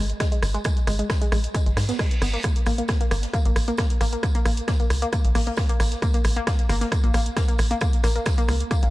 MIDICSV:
0, 0, Header, 1, 5, 480
1, 0, Start_track
1, 0, Tempo, 447761
1, 696, Time_signature, 4, 2, 24, 8
1, 9543, End_track
2, 0, Start_track
2, 0, Title_t, "Synth arpeggio sound"
2, 0, Program_c, 0, 84
2, 216, Note_on_c, 0, 56, 102
2, 252, Note_off_c, 0, 56, 0
2, 342, Note_on_c, 0, 56, 78
2, 396, Note_off_c, 0, 56, 0
2, 583, Note_on_c, 0, 56, 103
2, 615, Note_off_c, 0, 56, 0
2, 696, Note_on_c, 0, 56, 81
2, 756, Note_off_c, 0, 56, 0
2, 936, Note_on_c, 0, 56, 101
2, 972, Note_off_c, 0, 56, 0
2, 1063, Note_on_c, 0, 56, 80
2, 1117, Note_off_c, 0, 56, 0
2, 1302, Note_on_c, 0, 56, 103
2, 1335, Note_off_c, 0, 56, 0
2, 1416, Note_on_c, 0, 56, 77
2, 1476, Note_off_c, 0, 56, 0
2, 1656, Note_on_c, 0, 56, 102
2, 1692, Note_off_c, 0, 56, 0
2, 1783, Note_on_c, 0, 56, 77
2, 1837, Note_off_c, 0, 56, 0
2, 2023, Note_on_c, 0, 59, 76
2, 2103, Note_off_c, 0, 59, 0
2, 2136, Note_on_c, 0, 56, 79
2, 2226, Note_off_c, 0, 56, 0
2, 2375, Note_on_c, 0, 59, 100
2, 2412, Note_off_c, 0, 59, 0
2, 2503, Note_on_c, 0, 58, 97
2, 2557, Note_off_c, 0, 58, 0
2, 2616, Note_on_c, 0, 58, 80
2, 2676, Note_off_c, 0, 58, 0
2, 2856, Note_on_c, 0, 58, 99
2, 2892, Note_off_c, 0, 58, 0
2, 2983, Note_on_c, 0, 58, 75
2, 3037, Note_off_c, 0, 58, 0
2, 3223, Note_on_c, 0, 58, 101
2, 3255, Note_off_c, 0, 58, 0
2, 3336, Note_on_c, 0, 58, 76
2, 3396, Note_off_c, 0, 58, 0
2, 3576, Note_on_c, 0, 58, 102
2, 3612, Note_off_c, 0, 58, 0
2, 3704, Note_on_c, 0, 58, 79
2, 3757, Note_off_c, 0, 58, 0
2, 3943, Note_on_c, 0, 58, 100
2, 3975, Note_off_c, 0, 58, 0
2, 4056, Note_on_c, 0, 58, 82
2, 4116, Note_off_c, 0, 58, 0
2, 4296, Note_on_c, 0, 58, 101
2, 4332, Note_off_c, 0, 58, 0
2, 4423, Note_on_c, 0, 58, 77
2, 4477, Note_off_c, 0, 58, 0
2, 4663, Note_on_c, 0, 58, 107
2, 4695, Note_off_c, 0, 58, 0
2, 4776, Note_on_c, 0, 58, 75
2, 4837, Note_off_c, 0, 58, 0
2, 5016, Note_on_c, 0, 58, 108
2, 5052, Note_off_c, 0, 58, 0
2, 5144, Note_on_c, 0, 58, 77
2, 5197, Note_off_c, 0, 58, 0
2, 5383, Note_on_c, 0, 58, 98
2, 5415, Note_off_c, 0, 58, 0
2, 5496, Note_on_c, 0, 58, 83
2, 5556, Note_off_c, 0, 58, 0
2, 5736, Note_on_c, 0, 58, 98
2, 5772, Note_off_c, 0, 58, 0
2, 5863, Note_on_c, 0, 58, 80
2, 5917, Note_off_c, 0, 58, 0
2, 6103, Note_on_c, 0, 58, 103
2, 6135, Note_off_c, 0, 58, 0
2, 6216, Note_on_c, 0, 58, 76
2, 6276, Note_off_c, 0, 58, 0
2, 6457, Note_on_c, 0, 58, 98
2, 6492, Note_off_c, 0, 58, 0
2, 6583, Note_on_c, 0, 58, 77
2, 6637, Note_off_c, 0, 58, 0
2, 6823, Note_on_c, 0, 58, 106
2, 6855, Note_off_c, 0, 58, 0
2, 6936, Note_on_c, 0, 58, 85
2, 6996, Note_off_c, 0, 58, 0
2, 7175, Note_on_c, 0, 58, 97
2, 7212, Note_off_c, 0, 58, 0
2, 7302, Note_on_c, 0, 58, 76
2, 7356, Note_off_c, 0, 58, 0
2, 7542, Note_on_c, 0, 58, 102
2, 7575, Note_off_c, 0, 58, 0
2, 7655, Note_on_c, 0, 58, 79
2, 7716, Note_off_c, 0, 58, 0
2, 7895, Note_on_c, 0, 58, 95
2, 7932, Note_off_c, 0, 58, 0
2, 8022, Note_on_c, 0, 58, 77
2, 8076, Note_off_c, 0, 58, 0
2, 8262, Note_on_c, 0, 58, 102
2, 8295, Note_off_c, 0, 58, 0
2, 8375, Note_on_c, 0, 58, 80
2, 8436, Note_off_c, 0, 58, 0
2, 8615, Note_on_c, 0, 58, 107
2, 8652, Note_off_c, 0, 58, 0
2, 8742, Note_on_c, 0, 58, 80
2, 8796, Note_off_c, 0, 58, 0
2, 8983, Note_on_c, 0, 58, 107
2, 9015, Note_off_c, 0, 58, 0
2, 9095, Note_on_c, 0, 58, 76
2, 9156, Note_off_c, 0, 58, 0
2, 9335, Note_on_c, 0, 58, 100
2, 9372, Note_off_c, 0, 58, 0
2, 9463, Note_on_c, 0, 58, 74
2, 9516, Note_off_c, 0, 58, 0
2, 9543, End_track
3, 0, Start_track
3, 0, Title_t, "Analog synth bass"
3, 0, Program_c, 1, 38
3, 0, Note_on_c, 1, 32, 87
3, 143, Note_off_c, 1, 32, 0
3, 456, Note_on_c, 1, 32, 84
3, 623, Note_off_c, 1, 32, 0
3, 936, Note_on_c, 1, 32, 98
3, 1103, Note_off_c, 1, 32, 0
3, 1415, Note_on_c, 1, 34, 95
3, 1583, Note_off_c, 1, 34, 0
3, 1783, Note_on_c, 1, 32, 84
3, 1859, Note_off_c, 1, 32, 0
3, 1896, Note_on_c, 1, 44, 96
3, 2063, Note_off_c, 1, 44, 0
3, 2376, Note_on_c, 1, 32, 82
3, 2543, Note_off_c, 1, 32, 0
3, 2856, Note_on_c, 1, 34, 97
3, 3023, Note_off_c, 1, 34, 0
3, 3336, Note_on_c, 1, 32, 104
3, 3503, Note_off_c, 1, 32, 0
3, 3703, Note_on_c, 1, 34, 87
3, 3780, Note_off_c, 1, 34, 0
3, 3816, Note_on_c, 1, 34, 82
3, 3983, Note_off_c, 1, 34, 0
3, 4295, Note_on_c, 1, 34, 83
3, 4463, Note_off_c, 1, 34, 0
3, 4776, Note_on_c, 1, 34, 100
3, 4943, Note_off_c, 1, 34, 0
3, 5255, Note_on_c, 1, 37, 95
3, 5423, Note_off_c, 1, 37, 0
3, 5623, Note_on_c, 1, 34, 93
3, 5700, Note_off_c, 1, 34, 0
3, 5736, Note_on_c, 1, 34, 88
3, 5903, Note_off_c, 1, 34, 0
3, 6216, Note_on_c, 1, 34, 98
3, 6383, Note_off_c, 1, 34, 0
3, 6696, Note_on_c, 1, 34, 95
3, 6863, Note_off_c, 1, 34, 0
3, 7176, Note_on_c, 1, 32, 101
3, 7343, Note_off_c, 1, 32, 0
3, 7543, Note_on_c, 1, 34, 86
3, 7620, Note_off_c, 1, 34, 0
3, 7656, Note_on_c, 1, 34, 86
3, 7823, Note_off_c, 1, 34, 0
3, 8136, Note_on_c, 1, 34, 81
3, 8303, Note_off_c, 1, 34, 0
3, 8615, Note_on_c, 1, 34, 95
3, 8783, Note_off_c, 1, 34, 0
3, 9095, Note_on_c, 1, 37, 97
3, 9263, Note_off_c, 1, 37, 0
3, 9463, Note_on_c, 1, 34, 97
3, 9539, Note_off_c, 1, 34, 0
3, 9543, End_track
4, 0, Start_track
4, 0, Title_t, "Reverse cymbal"
4, 0, Program_c, 2, 119
4, 1656, Note_on_c, 2, 60, 60
4, 2616, Note_off_c, 2, 60, 0
4, 9543, End_track
5, 0, Start_track
5, 0, Title_t, "Drums"
5, 103, Note_on_c, 9, 42, 54
5, 210, Note_off_c, 9, 42, 0
5, 215, Note_on_c, 9, 36, 111
5, 215, Note_on_c, 9, 54, 82
5, 216, Note_on_c, 9, 37, 72
5, 216, Note_on_c, 9, 42, 80
5, 218, Note_on_c, 9, 38, 101
5, 322, Note_off_c, 9, 36, 0
5, 322, Note_off_c, 9, 54, 0
5, 323, Note_off_c, 9, 37, 0
5, 323, Note_off_c, 9, 42, 0
5, 325, Note_off_c, 9, 38, 0
5, 343, Note_on_c, 9, 42, 51
5, 450, Note_off_c, 9, 42, 0
5, 455, Note_on_c, 9, 37, 95
5, 455, Note_on_c, 9, 46, 100
5, 455, Note_on_c, 9, 54, 74
5, 562, Note_off_c, 9, 54, 0
5, 563, Note_off_c, 9, 37, 0
5, 563, Note_off_c, 9, 46, 0
5, 583, Note_on_c, 9, 42, 51
5, 689, Note_on_c, 9, 54, 94
5, 691, Note_off_c, 9, 42, 0
5, 695, Note_on_c, 9, 36, 118
5, 696, Note_on_c, 9, 37, 91
5, 696, Note_on_c, 9, 42, 76
5, 796, Note_off_c, 9, 54, 0
5, 802, Note_off_c, 9, 36, 0
5, 804, Note_off_c, 9, 37, 0
5, 804, Note_off_c, 9, 42, 0
5, 823, Note_on_c, 9, 42, 52
5, 930, Note_off_c, 9, 42, 0
5, 934, Note_on_c, 9, 54, 69
5, 936, Note_on_c, 9, 37, 74
5, 936, Note_on_c, 9, 46, 103
5, 1041, Note_off_c, 9, 54, 0
5, 1043, Note_off_c, 9, 37, 0
5, 1043, Note_off_c, 9, 46, 0
5, 1063, Note_on_c, 9, 42, 52
5, 1170, Note_off_c, 9, 42, 0
5, 1175, Note_on_c, 9, 36, 122
5, 1176, Note_on_c, 9, 37, 97
5, 1176, Note_on_c, 9, 42, 84
5, 1178, Note_on_c, 9, 38, 110
5, 1178, Note_on_c, 9, 54, 91
5, 1283, Note_off_c, 9, 36, 0
5, 1283, Note_off_c, 9, 37, 0
5, 1283, Note_off_c, 9, 42, 0
5, 1285, Note_off_c, 9, 38, 0
5, 1286, Note_off_c, 9, 54, 0
5, 1303, Note_on_c, 9, 42, 53
5, 1410, Note_off_c, 9, 42, 0
5, 1416, Note_on_c, 9, 37, 97
5, 1416, Note_on_c, 9, 46, 95
5, 1418, Note_on_c, 9, 54, 60
5, 1523, Note_off_c, 9, 37, 0
5, 1523, Note_off_c, 9, 46, 0
5, 1526, Note_off_c, 9, 54, 0
5, 1543, Note_on_c, 9, 42, 54
5, 1650, Note_off_c, 9, 42, 0
5, 1656, Note_on_c, 9, 36, 121
5, 1656, Note_on_c, 9, 37, 60
5, 1656, Note_on_c, 9, 42, 78
5, 1657, Note_on_c, 9, 54, 89
5, 1763, Note_off_c, 9, 36, 0
5, 1763, Note_off_c, 9, 37, 0
5, 1763, Note_off_c, 9, 42, 0
5, 1764, Note_off_c, 9, 54, 0
5, 1784, Note_on_c, 9, 42, 53
5, 1891, Note_off_c, 9, 42, 0
5, 1896, Note_on_c, 9, 37, 89
5, 1896, Note_on_c, 9, 46, 101
5, 1900, Note_on_c, 9, 38, 103
5, 1901, Note_on_c, 9, 54, 79
5, 2003, Note_off_c, 9, 37, 0
5, 2003, Note_off_c, 9, 46, 0
5, 2007, Note_off_c, 9, 38, 0
5, 2009, Note_off_c, 9, 54, 0
5, 2023, Note_on_c, 9, 42, 54
5, 2028, Note_on_c, 9, 54, 83
5, 2030, Note_on_c, 9, 38, 111
5, 2130, Note_off_c, 9, 42, 0
5, 2133, Note_off_c, 9, 38, 0
5, 2133, Note_on_c, 9, 38, 90
5, 2135, Note_off_c, 9, 54, 0
5, 2136, Note_on_c, 9, 36, 109
5, 2136, Note_on_c, 9, 37, 95
5, 2136, Note_on_c, 9, 46, 64
5, 2240, Note_off_c, 9, 38, 0
5, 2243, Note_off_c, 9, 36, 0
5, 2243, Note_off_c, 9, 37, 0
5, 2243, Note_off_c, 9, 46, 0
5, 2263, Note_on_c, 9, 42, 56
5, 2266, Note_off_c, 9, 42, 0
5, 2266, Note_on_c, 9, 42, 49
5, 2373, Note_off_c, 9, 42, 0
5, 2376, Note_on_c, 9, 37, 65
5, 2376, Note_on_c, 9, 46, 98
5, 2378, Note_on_c, 9, 54, 74
5, 2484, Note_off_c, 9, 37, 0
5, 2484, Note_off_c, 9, 46, 0
5, 2485, Note_off_c, 9, 54, 0
5, 2498, Note_on_c, 9, 38, 37
5, 2503, Note_on_c, 9, 42, 51
5, 2605, Note_off_c, 9, 38, 0
5, 2611, Note_off_c, 9, 42, 0
5, 2615, Note_on_c, 9, 36, 116
5, 2617, Note_on_c, 9, 37, 89
5, 2617, Note_on_c, 9, 42, 82
5, 2622, Note_on_c, 9, 54, 84
5, 2723, Note_off_c, 9, 36, 0
5, 2724, Note_off_c, 9, 37, 0
5, 2724, Note_off_c, 9, 42, 0
5, 2729, Note_off_c, 9, 54, 0
5, 2744, Note_on_c, 9, 42, 57
5, 2849, Note_on_c, 9, 54, 72
5, 2851, Note_off_c, 9, 42, 0
5, 2856, Note_on_c, 9, 37, 70
5, 2856, Note_on_c, 9, 46, 105
5, 2957, Note_off_c, 9, 54, 0
5, 2963, Note_off_c, 9, 37, 0
5, 2963, Note_off_c, 9, 46, 0
5, 2983, Note_on_c, 9, 42, 56
5, 3088, Note_on_c, 9, 54, 81
5, 3091, Note_off_c, 9, 42, 0
5, 3095, Note_on_c, 9, 36, 119
5, 3095, Note_on_c, 9, 38, 114
5, 3096, Note_on_c, 9, 37, 91
5, 3096, Note_on_c, 9, 42, 84
5, 3195, Note_off_c, 9, 54, 0
5, 3202, Note_off_c, 9, 38, 0
5, 3203, Note_off_c, 9, 36, 0
5, 3203, Note_off_c, 9, 37, 0
5, 3203, Note_off_c, 9, 42, 0
5, 3223, Note_on_c, 9, 42, 53
5, 3331, Note_off_c, 9, 42, 0
5, 3336, Note_on_c, 9, 37, 92
5, 3336, Note_on_c, 9, 46, 98
5, 3338, Note_on_c, 9, 54, 63
5, 3443, Note_off_c, 9, 37, 0
5, 3443, Note_off_c, 9, 46, 0
5, 3446, Note_off_c, 9, 54, 0
5, 3454, Note_on_c, 9, 38, 55
5, 3463, Note_on_c, 9, 42, 57
5, 3561, Note_off_c, 9, 38, 0
5, 3570, Note_off_c, 9, 42, 0
5, 3575, Note_on_c, 9, 36, 117
5, 3575, Note_on_c, 9, 37, 59
5, 3575, Note_on_c, 9, 42, 78
5, 3577, Note_on_c, 9, 54, 86
5, 3682, Note_off_c, 9, 36, 0
5, 3683, Note_off_c, 9, 37, 0
5, 3683, Note_off_c, 9, 42, 0
5, 3684, Note_off_c, 9, 54, 0
5, 3703, Note_on_c, 9, 42, 52
5, 3810, Note_off_c, 9, 42, 0
5, 3815, Note_on_c, 9, 54, 69
5, 3816, Note_on_c, 9, 37, 90
5, 3816, Note_on_c, 9, 46, 103
5, 3922, Note_off_c, 9, 54, 0
5, 3923, Note_off_c, 9, 37, 0
5, 3923, Note_off_c, 9, 46, 0
5, 3943, Note_on_c, 9, 42, 56
5, 4046, Note_on_c, 9, 54, 89
5, 4050, Note_off_c, 9, 42, 0
5, 4055, Note_on_c, 9, 36, 112
5, 4056, Note_on_c, 9, 37, 98
5, 4056, Note_on_c, 9, 42, 87
5, 4058, Note_on_c, 9, 38, 105
5, 4154, Note_off_c, 9, 54, 0
5, 4163, Note_off_c, 9, 36, 0
5, 4163, Note_off_c, 9, 37, 0
5, 4163, Note_off_c, 9, 42, 0
5, 4165, Note_off_c, 9, 38, 0
5, 4183, Note_on_c, 9, 42, 56
5, 4290, Note_off_c, 9, 42, 0
5, 4296, Note_on_c, 9, 37, 61
5, 4296, Note_on_c, 9, 46, 98
5, 4299, Note_on_c, 9, 54, 68
5, 4403, Note_off_c, 9, 37, 0
5, 4403, Note_off_c, 9, 46, 0
5, 4406, Note_off_c, 9, 54, 0
5, 4423, Note_on_c, 9, 42, 51
5, 4530, Note_off_c, 9, 42, 0
5, 4535, Note_on_c, 9, 36, 127
5, 4535, Note_on_c, 9, 54, 88
5, 4536, Note_on_c, 9, 37, 93
5, 4536, Note_on_c, 9, 42, 83
5, 4642, Note_off_c, 9, 54, 0
5, 4643, Note_off_c, 9, 36, 0
5, 4643, Note_off_c, 9, 37, 0
5, 4643, Note_off_c, 9, 42, 0
5, 4662, Note_on_c, 9, 42, 56
5, 4770, Note_off_c, 9, 42, 0
5, 4775, Note_on_c, 9, 37, 87
5, 4775, Note_on_c, 9, 46, 110
5, 4776, Note_on_c, 9, 54, 64
5, 4883, Note_off_c, 9, 37, 0
5, 4883, Note_off_c, 9, 46, 0
5, 4883, Note_off_c, 9, 54, 0
5, 4902, Note_on_c, 9, 42, 58
5, 5010, Note_off_c, 9, 42, 0
5, 5013, Note_on_c, 9, 38, 109
5, 5015, Note_on_c, 9, 37, 68
5, 5015, Note_on_c, 9, 42, 86
5, 5016, Note_on_c, 9, 36, 122
5, 5018, Note_on_c, 9, 54, 87
5, 5120, Note_off_c, 9, 38, 0
5, 5123, Note_off_c, 9, 36, 0
5, 5123, Note_off_c, 9, 37, 0
5, 5123, Note_off_c, 9, 42, 0
5, 5125, Note_off_c, 9, 54, 0
5, 5143, Note_on_c, 9, 42, 50
5, 5250, Note_off_c, 9, 42, 0
5, 5253, Note_on_c, 9, 54, 70
5, 5255, Note_on_c, 9, 37, 89
5, 5255, Note_on_c, 9, 46, 110
5, 5360, Note_off_c, 9, 54, 0
5, 5363, Note_off_c, 9, 37, 0
5, 5363, Note_off_c, 9, 46, 0
5, 5383, Note_on_c, 9, 42, 56
5, 5490, Note_off_c, 9, 42, 0
5, 5493, Note_on_c, 9, 54, 85
5, 5496, Note_on_c, 9, 36, 127
5, 5496, Note_on_c, 9, 37, 80
5, 5496, Note_on_c, 9, 42, 75
5, 5600, Note_off_c, 9, 54, 0
5, 5603, Note_off_c, 9, 36, 0
5, 5603, Note_off_c, 9, 37, 0
5, 5603, Note_off_c, 9, 42, 0
5, 5623, Note_on_c, 9, 42, 55
5, 5730, Note_off_c, 9, 42, 0
5, 5736, Note_on_c, 9, 37, 64
5, 5736, Note_on_c, 9, 46, 108
5, 5843, Note_off_c, 9, 37, 0
5, 5843, Note_off_c, 9, 46, 0
5, 5863, Note_on_c, 9, 42, 53
5, 5967, Note_on_c, 9, 54, 83
5, 5970, Note_off_c, 9, 42, 0
5, 5974, Note_on_c, 9, 38, 119
5, 5976, Note_on_c, 9, 36, 122
5, 5976, Note_on_c, 9, 37, 96
5, 5976, Note_on_c, 9, 46, 66
5, 6074, Note_off_c, 9, 54, 0
5, 6081, Note_off_c, 9, 38, 0
5, 6083, Note_off_c, 9, 36, 0
5, 6083, Note_off_c, 9, 37, 0
5, 6083, Note_off_c, 9, 46, 0
5, 6103, Note_on_c, 9, 42, 58
5, 6106, Note_off_c, 9, 42, 0
5, 6106, Note_on_c, 9, 42, 43
5, 6213, Note_off_c, 9, 42, 0
5, 6216, Note_on_c, 9, 37, 87
5, 6216, Note_on_c, 9, 46, 110
5, 6223, Note_on_c, 9, 54, 75
5, 6323, Note_off_c, 9, 37, 0
5, 6323, Note_off_c, 9, 46, 0
5, 6330, Note_off_c, 9, 54, 0
5, 6341, Note_on_c, 9, 38, 38
5, 6343, Note_on_c, 9, 42, 51
5, 6449, Note_off_c, 9, 38, 0
5, 6450, Note_off_c, 9, 42, 0
5, 6455, Note_on_c, 9, 36, 125
5, 6456, Note_on_c, 9, 37, 61
5, 6456, Note_on_c, 9, 42, 82
5, 6462, Note_on_c, 9, 54, 78
5, 6563, Note_off_c, 9, 36, 0
5, 6563, Note_off_c, 9, 37, 0
5, 6563, Note_off_c, 9, 42, 0
5, 6569, Note_off_c, 9, 54, 0
5, 6583, Note_on_c, 9, 42, 54
5, 6689, Note_on_c, 9, 54, 65
5, 6690, Note_off_c, 9, 42, 0
5, 6696, Note_on_c, 9, 37, 92
5, 6696, Note_on_c, 9, 46, 113
5, 6796, Note_off_c, 9, 54, 0
5, 6803, Note_off_c, 9, 37, 0
5, 6803, Note_off_c, 9, 46, 0
5, 6823, Note_on_c, 9, 42, 52
5, 6930, Note_off_c, 9, 42, 0
5, 6936, Note_on_c, 9, 36, 124
5, 6936, Note_on_c, 9, 37, 93
5, 6936, Note_on_c, 9, 42, 80
5, 6938, Note_on_c, 9, 54, 88
5, 6940, Note_on_c, 9, 38, 127
5, 7043, Note_off_c, 9, 36, 0
5, 7043, Note_off_c, 9, 37, 0
5, 7043, Note_off_c, 9, 42, 0
5, 7045, Note_off_c, 9, 54, 0
5, 7047, Note_off_c, 9, 38, 0
5, 7063, Note_on_c, 9, 42, 53
5, 7170, Note_off_c, 9, 42, 0
5, 7174, Note_on_c, 9, 54, 60
5, 7176, Note_on_c, 9, 37, 64
5, 7176, Note_on_c, 9, 46, 111
5, 7282, Note_off_c, 9, 54, 0
5, 7283, Note_off_c, 9, 37, 0
5, 7283, Note_off_c, 9, 46, 0
5, 7302, Note_on_c, 9, 38, 57
5, 7304, Note_on_c, 9, 42, 55
5, 7410, Note_off_c, 9, 38, 0
5, 7411, Note_off_c, 9, 42, 0
5, 7415, Note_on_c, 9, 36, 124
5, 7415, Note_on_c, 9, 54, 77
5, 7417, Note_on_c, 9, 37, 78
5, 7417, Note_on_c, 9, 42, 73
5, 7522, Note_off_c, 9, 36, 0
5, 7522, Note_off_c, 9, 54, 0
5, 7524, Note_off_c, 9, 37, 0
5, 7524, Note_off_c, 9, 42, 0
5, 7544, Note_on_c, 9, 42, 50
5, 7650, Note_on_c, 9, 54, 65
5, 7651, Note_off_c, 9, 42, 0
5, 7656, Note_on_c, 9, 37, 84
5, 7656, Note_on_c, 9, 46, 109
5, 7757, Note_off_c, 9, 54, 0
5, 7763, Note_off_c, 9, 37, 0
5, 7763, Note_off_c, 9, 46, 0
5, 7783, Note_on_c, 9, 42, 56
5, 7891, Note_off_c, 9, 42, 0
5, 7895, Note_on_c, 9, 36, 124
5, 7895, Note_on_c, 9, 54, 91
5, 7896, Note_on_c, 9, 37, 65
5, 7896, Note_on_c, 9, 42, 85
5, 7899, Note_on_c, 9, 38, 114
5, 8002, Note_off_c, 9, 36, 0
5, 8002, Note_off_c, 9, 54, 0
5, 8003, Note_off_c, 9, 37, 0
5, 8003, Note_off_c, 9, 42, 0
5, 8006, Note_off_c, 9, 38, 0
5, 8023, Note_on_c, 9, 42, 54
5, 8130, Note_on_c, 9, 54, 73
5, 8131, Note_off_c, 9, 42, 0
5, 8136, Note_on_c, 9, 37, 86
5, 8136, Note_on_c, 9, 46, 109
5, 8237, Note_off_c, 9, 54, 0
5, 8243, Note_off_c, 9, 37, 0
5, 8243, Note_off_c, 9, 46, 0
5, 8263, Note_on_c, 9, 42, 50
5, 8369, Note_on_c, 9, 54, 91
5, 8370, Note_off_c, 9, 42, 0
5, 8375, Note_on_c, 9, 36, 127
5, 8376, Note_on_c, 9, 37, 86
5, 8376, Note_on_c, 9, 42, 76
5, 8476, Note_off_c, 9, 54, 0
5, 8482, Note_off_c, 9, 36, 0
5, 8484, Note_off_c, 9, 37, 0
5, 8484, Note_off_c, 9, 42, 0
5, 8504, Note_on_c, 9, 42, 49
5, 8611, Note_off_c, 9, 42, 0
5, 8613, Note_on_c, 9, 54, 73
5, 8616, Note_on_c, 9, 37, 67
5, 8616, Note_on_c, 9, 46, 114
5, 8720, Note_off_c, 9, 54, 0
5, 8724, Note_off_c, 9, 37, 0
5, 8724, Note_off_c, 9, 46, 0
5, 8744, Note_on_c, 9, 42, 51
5, 8851, Note_off_c, 9, 42, 0
5, 8851, Note_on_c, 9, 54, 99
5, 8853, Note_on_c, 9, 38, 109
5, 8855, Note_on_c, 9, 36, 126
5, 8856, Note_on_c, 9, 37, 90
5, 8856, Note_on_c, 9, 42, 80
5, 8958, Note_off_c, 9, 54, 0
5, 8960, Note_off_c, 9, 38, 0
5, 8962, Note_off_c, 9, 36, 0
5, 8964, Note_off_c, 9, 37, 0
5, 8964, Note_off_c, 9, 42, 0
5, 8984, Note_on_c, 9, 42, 50
5, 9091, Note_off_c, 9, 42, 0
5, 9093, Note_on_c, 9, 54, 71
5, 9096, Note_on_c, 9, 37, 83
5, 9096, Note_on_c, 9, 46, 101
5, 9200, Note_off_c, 9, 54, 0
5, 9203, Note_off_c, 9, 37, 0
5, 9203, Note_off_c, 9, 46, 0
5, 9223, Note_on_c, 9, 42, 51
5, 9331, Note_off_c, 9, 42, 0
5, 9334, Note_on_c, 9, 54, 87
5, 9335, Note_on_c, 9, 36, 122
5, 9336, Note_on_c, 9, 37, 60
5, 9336, Note_on_c, 9, 42, 75
5, 9441, Note_off_c, 9, 54, 0
5, 9442, Note_off_c, 9, 36, 0
5, 9443, Note_off_c, 9, 37, 0
5, 9443, Note_off_c, 9, 42, 0
5, 9463, Note_on_c, 9, 42, 53
5, 9543, Note_off_c, 9, 42, 0
5, 9543, End_track
0, 0, End_of_file